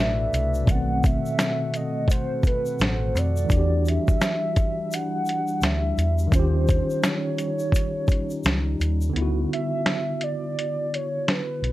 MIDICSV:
0, 0, Header, 1, 6, 480
1, 0, Start_track
1, 0, Key_signature, 2, "major"
1, 0, Tempo, 705882
1, 460, Time_signature, 4, 2, 24, 8
1, 7972, End_track
2, 0, Start_track
2, 0, Title_t, "Soft synth lead"
2, 0, Program_c, 0, 80
2, 0, Note_on_c, 0, 76, 111
2, 483, Note_on_c, 0, 78, 92
2, 493, Note_off_c, 0, 76, 0
2, 719, Note_on_c, 0, 76, 112
2, 729, Note_off_c, 0, 78, 0
2, 1197, Note_on_c, 0, 75, 96
2, 1208, Note_off_c, 0, 76, 0
2, 1429, Note_off_c, 0, 75, 0
2, 1434, Note_on_c, 0, 72, 98
2, 1651, Note_off_c, 0, 72, 0
2, 1678, Note_on_c, 0, 71, 95
2, 1926, Note_on_c, 0, 72, 91
2, 1936, Note_off_c, 0, 71, 0
2, 2164, Note_on_c, 0, 74, 91
2, 2174, Note_off_c, 0, 72, 0
2, 2642, Note_on_c, 0, 76, 117
2, 2652, Note_off_c, 0, 74, 0
2, 3362, Note_on_c, 0, 78, 109
2, 3372, Note_off_c, 0, 76, 0
2, 3837, Note_on_c, 0, 76, 97
2, 3847, Note_off_c, 0, 78, 0
2, 4309, Note_off_c, 0, 76, 0
2, 4319, Note_on_c, 0, 72, 90
2, 4799, Note_on_c, 0, 73, 98
2, 4809, Note_off_c, 0, 72, 0
2, 5990, Note_off_c, 0, 73, 0
2, 6481, Note_on_c, 0, 76, 124
2, 6959, Note_on_c, 0, 74, 116
2, 6970, Note_off_c, 0, 76, 0
2, 7445, Note_on_c, 0, 73, 97
2, 7455, Note_off_c, 0, 74, 0
2, 7685, Note_on_c, 0, 71, 89
2, 7695, Note_off_c, 0, 73, 0
2, 7972, Note_off_c, 0, 71, 0
2, 7972, End_track
3, 0, Start_track
3, 0, Title_t, "Glass harmonica"
3, 0, Program_c, 1, 92
3, 0, Note_on_c, 1, 57, 66
3, 0, Note_on_c, 1, 66, 56
3, 0, Note_on_c, 1, 69, 55
3, 0, Note_on_c, 1, 71, 58
3, 0, Note_on_c, 1, 74, 61
3, 0, Note_on_c, 1, 76, 68
3, 436, Note_off_c, 1, 74, 0
3, 436, Note_off_c, 1, 76, 0
3, 441, Note_off_c, 1, 71, 0
3, 460, Note_on_c, 1, 60, 56
3, 460, Note_on_c, 1, 78, 64
3, 2352, Note_off_c, 1, 69, 0
3, 2354, Note_off_c, 1, 57, 0
3, 2354, Note_off_c, 1, 66, 0
3, 2361, Note_off_c, 1, 60, 0
3, 2361, Note_off_c, 1, 78, 0
3, 2378, Note_on_c, 1, 55, 68
3, 2378, Note_on_c, 1, 62, 69
3, 2378, Note_on_c, 1, 64, 57
3, 4280, Note_off_c, 1, 62, 0
3, 4280, Note_off_c, 1, 64, 0
3, 4303, Note_on_c, 1, 63, 61
3, 4304, Note_on_c, 1, 61, 66
3, 6192, Note_off_c, 1, 55, 0
3, 6202, Note_off_c, 1, 63, 0
3, 6203, Note_off_c, 1, 61, 0
3, 7972, End_track
4, 0, Start_track
4, 0, Title_t, "Tine electric piano"
4, 0, Program_c, 2, 4
4, 0, Control_c, 2, 64, 127
4, 0, Note_on_c, 2, 47, 59
4, 0, Note_on_c, 2, 57, 57
4, 0, Note_on_c, 2, 62, 56
4, 0, Note_on_c, 2, 64, 52
4, 0, Note_on_c, 2, 74, 66
4, 414, Note_off_c, 2, 47, 0
4, 424, Note_off_c, 2, 57, 0
4, 425, Note_on_c, 2, 47, 62
4, 434, Note_off_c, 2, 62, 0
4, 445, Note_off_c, 2, 64, 0
4, 452, Note_on_c, 2, 57, 52
4, 455, Note_off_c, 2, 74, 0
4, 469, Control_c, 2, 64, 0
4, 479, Note_on_c, 2, 51, 49
4, 507, Note_on_c, 2, 60, 64
4, 582, Control_c, 2, 64, 127
4, 2335, Note_off_c, 2, 47, 0
4, 2344, Note_on_c, 2, 52, 64
4, 2349, Note_off_c, 2, 57, 0
4, 2363, Note_off_c, 2, 51, 0
4, 2372, Note_on_c, 2, 62, 58
4, 2376, Note_off_c, 2, 60, 0
4, 2390, Control_c, 2, 64, 0
4, 2398, Note_on_c, 2, 66, 51
4, 2427, Note_on_c, 2, 67, 62
4, 2497, Control_c, 2, 64, 127
4, 4255, Note_off_c, 2, 52, 0
4, 4264, Note_on_c, 2, 51, 61
4, 4269, Note_off_c, 2, 62, 0
4, 4282, Note_off_c, 2, 66, 0
4, 4291, Note_on_c, 2, 61, 56
4, 4296, Note_off_c, 2, 67, 0
4, 4308, Control_c, 2, 64, 0
4, 4319, Note_on_c, 2, 65, 57
4, 4347, Note_on_c, 2, 67, 72
4, 4422, Control_c, 2, 64, 127
4, 6175, Note_off_c, 2, 51, 0
4, 6185, Note_on_c, 2, 50, 63
4, 6189, Note_off_c, 2, 61, 0
4, 6203, Note_off_c, 2, 65, 0
4, 6212, Note_on_c, 2, 59, 61
4, 6216, Note_off_c, 2, 67, 0
4, 6230, Control_c, 2, 64, 0
4, 6240, Note_on_c, 2, 64, 62
4, 6268, Note_on_c, 2, 66, 65
4, 6353, Control_c, 2, 64, 127
4, 7972, Note_off_c, 2, 50, 0
4, 7972, Note_off_c, 2, 59, 0
4, 7972, Note_off_c, 2, 64, 0
4, 7972, Note_off_c, 2, 66, 0
4, 7972, End_track
5, 0, Start_track
5, 0, Title_t, "Fingered electric bass"
5, 0, Program_c, 3, 33
5, 0, Note_on_c, 3, 33, 89
5, 178, Note_off_c, 3, 33, 0
5, 223, Note_on_c, 3, 36, 88
5, 419, Note_off_c, 3, 36, 0
5, 459, Note_on_c, 3, 35, 113
5, 779, Note_off_c, 3, 35, 0
5, 1902, Note_on_c, 3, 33, 98
5, 2142, Note_off_c, 3, 33, 0
5, 2142, Note_on_c, 3, 41, 84
5, 2338, Note_off_c, 3, 41, 0
5, 2381, Note_on_c, 3, 40, 98
5, 2700, Note_off_c, 3, 40, 0
5, 3821, Note_on_c, 3, 38, 98
5, 4018, Note_off_c, 3, 38, 0
5, 4062, Note_on_c, 3, 40, 83
5, 4258, Note_off_c, 3, 40, 0
5, 4299, Note_on_c, 3, 39, 111
5, 4618, Note_off_c, 3, 39, 0
5, 5743, Note_on_c, 3, 37, 78
5, 5939, Note_off_c, 3, 37, 0
5, 5983, Note_on_c, 3, 39, 93
5, 6179, Note_off_c, 3, 39, 0
5, 6223, Note_on_c, 3, 38, 97
5, 6419, Note_off_c, 3, 38, 0
5, 7903, Note_on_c, 3, 35, 72
5, 7972, Note_off_c, 3, 35, 0
5, 7972, End_track
6, 0, Start_track
6, 0, Title_t, "Drums"
6, 229, Note_on_c, 9, 82, 49
6, 232, Note_on_c, 9, 42, 64
6, 297, Note_off_c, 9, 82, 0
6, 300, Note_off_c, 9, 42, 0
6, 368, Note_on_c, 9, 82, 53
6, 436, Note_off_c, 9, 82, 0
6, 458, Note_on_c, 9, 36, 116
6, 462, Note_on_c, 9, 82, 59
6, 469, Note_on_c, 9, 42, 78
6, 526, Note_off_c, 9, 36, 0
6, 530, Note_off_c, 9, 82, 0
6, 537, Note_off_c, 9, 42, 0
6, 705, Note_on_c, 9, 82, 54
6, 708, Note_on_c, 9, 36, 96
6, 720, Note_on_c, 9, 42, 55
6, 773, Note_off_c, 9, 82, 0
6, 776, Note_off_c, 9, 36, 0
6, 788, Note_off_c, 9, 42, 0
6, 855, Note_on_c, 9, 82, 41
6, 923, Note_off_c, 9, 82, 0
6, 944, Note_on_c, 9, 26, 97
6, 944, Note_on_c, 9, 38, 106
6, 948, Note_on_c, 9, 42, 78
6, 948, Note_on_c, 9, 82, 65
6, 1012, Note_off_c, 9, 26, 0
6, 1012, Note_off_c, 9, 38, 0
6, 1016, Note_off_c, 9, 42, 0
6, 1016, Note_off_c, 9, 82, 0
6, 1181, Note_on_c, 9, 42, 60
6, 1185, Note_on_c, 9, 82, 42
6, 1249, Note_off_c, 9, 42, 0
6, 1253, Note_off_c, 9, 82, 0
6, 1412, Note_on_c, 9, 36, 87
6, 1427, Note_on_c, 9, 82, 76
6, 1438, Note_on_c, 9, 42, 89
6, 1480, Note_off_c, 9, 36, 0
6, 1495, Note_off_c, 9, 82, 0
6, 1506, Note_off_c, 9, 42, 0
6, 1654, Note_on_c, 9, 36, 81
6, 1655, Note_on_c, 9, 82, 45
6, 1680, Note_on_c, 9, 42, 57
6, 1722, Note_off_c, 9, 36, 0
6, 1723, Note_off_c, 9, 82, 0
6, 1748, Note_off_c, 9, 42, 0
6, 1808, Note_on_c, 9, 82, 45
6, 1876, Note_off_c, 9, 82, 0
6, 1899, Note_on_c, 9, 82, 56
6, 1913, Note_on_c, 9, 42, 72
6, 1914, Note_on_c, 9, 26, 85
6, 1914, Note_on_c, 9, 38, 108
6, 1967, Note_off_c, 9, 82, 0
6, 1981, Note_off_c, 9, 42, 0
6, 1982, Note_off_c, 9, 26, 0
6, 1982, Note_off_c, 9, 38, 0
6, 2149, Note_on_c, 9, 82, 47
6, 2155, Note_on_c, 9, 42, 62
6, 2217, Note_off_c, 9, 82, 0
6, 2223, Note_off_c, 9, 42, 0
6, 2288, Note_on_c, 9, 82, 57
6, 2356, Note_off_c, 9, 82, 0
6, 2379, Note_on_c, 9, 36, 108
6, 2380, Note_on_c, 9, 82, 64
6, 2391, Note_on_c, 9, 42, 81
6, 2447, Note_off_c, 9, 36, 0
6, 2448, Note_off_c, 9, 82, 0
6, 2459, Note_off_c, 9, 42, 0
6, 2622, Note_on_c, 9, 82, 49
6, 2641, Note_on_c, 9, 42, 54
6, 2690, Note_off_c, 9, 82, 0
6, 2709, Note_off_c, 9, 42, 0
6, 2774, Note_on_c, 9, 82, 48
6, 2775, Note_on_c, 9, 36, 82
6, 2842, Note_off_c, 9, 82, 0
6, 2843, Note_off_c, 9, 36, 0
6, 2866, Note_on_c, 9, 38, 117
6, 2866, Note_on_c, 9, 82, 68
6, 2867, Note_on_c, 9, 26, 88
6, 2871, Note_on_c, 9, 42, 67
6, 2934, Note_off_c, 9, 38, 0
6, 2934, Note_off_c, 9, 82, 0
6, 2935, Note_off_c, 9, 26, 0
6, 2939, Note_off_c, 9, 42, 0
6, 3102, Note_on_c, 9, 82, 44
6, 3103, Note_on_c, 9, 42, 69
6, 3105, Note_on_c, 9, 36, 91
6, 3170, Note_off_c, 9, 82, 0
6, 3171, Note_off_c, 9, 42, 0
6, 3173, Note_off_c, 9, 36, 0
6, 3344, Note_on_c, 9, 82, 76
6, 3357, Note_on_c, 9, 42, 84
6, 3412, Note_off_c, 9, 82, 0
6, 3425, Note_off_c, 9, 42, 0
6, 3574, Note_on_c, 9, 82, 44
6, 3598, Note_on_c, 9, 42, 57
6, 3642, Note_off_c, 9, 82, 0
6, 3666, Note_off_c, 9, 42, 0
6, 3724, Note_on_c, 9, 82, 46
6, 3792, Note_off_c, 9, 82, 0
6, 3818, Note_on_c, 9, 82, 63
6, 3831, Note_on_c, 9, 42, 73
6, 3832, Note_on_c, 9, 26, 83
6, 3832, Note_on_c, 9, 38, 98
6, 3886, Note_off_c, 9, 82, 0
6, 3899, Note_off_c, 9, 42, 0
6, 3900, Note_off_c, 9, 26, 0
6, 3900, Note_off_c, 9, 38, 0
6, 4067, Note_on_c, 9, 82, 46
6, 4072, Note_on_c, 9, 42, 63
6, 4135, Note_off_c, 9, 82, 0
6, 4140, Note_off_c, 9, 42, 0
6, 4205, Note_on_c, 9, 82, 52
6, 4273, Note_off_c, 9, 82, 0
6, 4298, Note_on_c, 9, 36, 107
6, 4301, Note_on_c, 9, 82, 58
6, 4308, Note_on_c, 9, 42, 77
6, 4366, Note_off_c, 9, 36, 0
6, 4369, Note_off_c, 9, 82, 0
6, 4376, Note_off_c, 9, 42, 0
6, 4543, Note_on_c, 9, 82, 50
6, 4548, Note_on_c, 9, 36, 100
6, 4558, Note_on_c, 9, 42, 61
6, 4611, Note_off_c, 9, 82, 0
6, 4616, Note_off_c, 9, 36, 0
6, 4626, Note_off_c, 9, 42, 0
6, 4693, Note_on_c, 9, 82, 42
6, 4761, Note_off_c, 9, 82, 0
6, 4784, Note_on_c, 9, 26, 89
6, 4784, Note_on_c, 9, 38, 111
6, 4784, Note_on_c, 9, 82, 67
6, 4789, Note_on_c, 9, 42, 73
6, 4852, Note_off_c, 9, 26, 0
6, 4852, Note_off_c, 9, 38, 0
6, 4852, Note_off_c, 9, 82, 0
6, 4857, Note_off_c, 9, 42, 0
6, 5022, Note_on_c, 9, 42, 69
6, 5023, Note_on_c, 9, 82, 46
6, 5090, Note_off_c, 9, 42, 0
6, 5091, Note_off_c, 9, 82, 0
6, 5163, Note_on_c, 9, 82, 44
6, 5231, Note_off_c, 9, 82, 0
6, 5252, Note_on_c, 9, 36, 85
6, 5266, Note_on_c, 9, 82, 78
6, 5277, Note_on_c, 9, 42, 87
6, 5320, Note_off_c, 9, 36, 0
6, 5334, Note_off_c, 9, 82, 0
6, 5345, Note_off_c, 9, 42, 0
6, 5494, Note_on_c, 9, 36, 91
6, 5494, Note_on_c, 9, 82, 47
6, 5519, Note_on_c, 9, 42, 62
6, 5562, Note_off_c, 9, 36, 0
6, 5562, Note_off_c, 9, 82, 0
6, 5587, Note_off_c, 9, 42, 0
6, 5645, Note_on_c, 9, 82, 52
6, 5713, Note_off_c, 9, 82, 0
6, 5738, Note_on_c, 9, 82, 67
6, 5751, Note_on_c, 9, 42, 74
6, 5752, Note_on_c, 9, 26, 85
6, 5752, Note_on_c, 9, 38, 112
6, 5806, Note_off_c, 9, 82, 0
6, 5819, Note_off_c, 9, 42, 0
6, 5820, Note_off_c, 9, 26, 0
6, 5820, Note_off_c, 9, 38, 0
6, 5990, Note_on_c, 9, 82, 43
6, 5993, Note_on_c, 9, 42, 67
6, 6058, Note_off_c, 9, 82, 0
6, 6061, Note_off_c, 9, 42, 0
6, 6129, Note_on_c, 9, 82, 52
6, 6197, Note_off_c, 9, 82, 0
6, 6230, Note_on_c, 9, 42, 78
6, 6298, Note_off_c, 9, 42, 0
6, 6482, Note_on_c, 9, 42, 51
6, 6550, Note_off_c, 9, 42, 0
6, 6705, Note_on_c, 9, 26, 86
6, 6705, Note_on_c, 9, 38, 107
6, 6709, Note_on_c, 9, 42, 67
6, 6773, Note_off_c, 9, 26, 0
6, 6773, Note_off_c, 9, 38, 0
6, 6777, Note_off_c, 9, 42, 0
6, 6942, Note_on_c, 9, 42, 65
6, 7010, Note_off_c, 9, 42, 0
6, 7199, Note_on_c, 9, 42, 84
6, 7267, Note_off_c, 9, 42, 0
6, 7439, Note_on_c, 9, 42, 61
6, 7507, Note_off_c, 9, 42, 0
6, 7672, Note_on_c, 9, 26, 77
6, 7672, Note_on_c, 9, 38, 104
6, 7672, Note_on_c, 9, 42, 70
6, 7740, Note_off_c, 9, 26, 0
6, 7740, Note_off_c, 9, 38, 0
6, 7740, Note_off_c, 9, 42, 0
6, 7914, Note_on_c, 9, 42, 59
6, 7972, Note_off_c, 9, 42, 0
6, 7972, End_track
0, 0, End_of_file